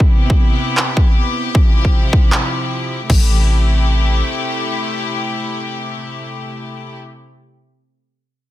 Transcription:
Already playing: C3
0.00 B3 E4 G4, kick
0.30 kick
0.77 clap
0.97 kick
1.55 C3 F3 E4, kick
1.85 kick
2.13 kick
2.32 clap
3.09 A1 C3 A3 E4 G4, kick, crash

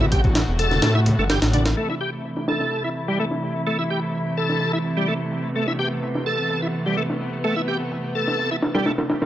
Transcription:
Already playing: A1 C3 E3 A3 F#4
0.00 E4, high conga, low conga
0.12 G4, kick, closed hi-hat, muted conga
0.24 A1, kick, low conga
0.35 snare, closed hi-hat
0.48 E1
0.59 A4, closed hi-hat
0.71 snare, high conga
0.82 A2, snare, closed hi-hat, muted conga
0.95 E4
1.06 closed hi-hat, muted conga, low conga
1.19 G1 A3
1.30 G4, snare, closed hi-hat
1.42 A1, snare, closed hi-hat
1.53 D4, closed hi-hat, muted conga, high conga
1.66 snare, closed hi-hat
1.77 C3 E3 A3 E4, closed hi-hat
1.89 E4, snare
2.00 G4, closed hi-hat
2.24 closed hi-hat
2.37 snare
2.48 A4, snare, closed hi-hat
2.60 snare
2.71 closed hi-hat
2.84 E4
2.95 closed hi-hat
3.08 G3
3.19 A3, closed hi-hat
3.31 snare
3.42 closed hi-hat
3.66 A3, closed hi-hat
3.79 E4
3.90 G4, closed hi-hat
4.13 closed hi-hat
4.37 A4, closed hi-hat
4.49 snare
4.60 closed hi-hat
4.73 E4
4.84 closed hi-hat
4.97 G3
5.08 A3, closed hi-hat
5.32 closed hi-hat
5.55 A3 B3, closed hi-hat
5.68 E4, snare
5.79 G4, closed hi-hat
6.03 closed hi-hat
6.15 snare
6.26 A4, closed hi-hat
6.50 closed hi-hat
6.62 E4
6.74 closed hi-hat
6.86 G3
6.97 A3, closed hi-hat
7.10 snare
7.21 closed hi-hat
7.44 A3, closed hi-hat
7.56 E4
7.68 G4, closed hi-hat
7.92 closed hi-hat
8.15 A4, closed hi-hat
8.27 snare
8.39 closed hi-hat
8.51 E4
8.62 snare, closed hi-hat
8.75 G3, snare, closed hi-hat
8.86 A3, snare, closed hi-hat
8.98 snare, closed hi-hat
9.10 snare, closed hi-hat
9.22 snare, closed hi-hat

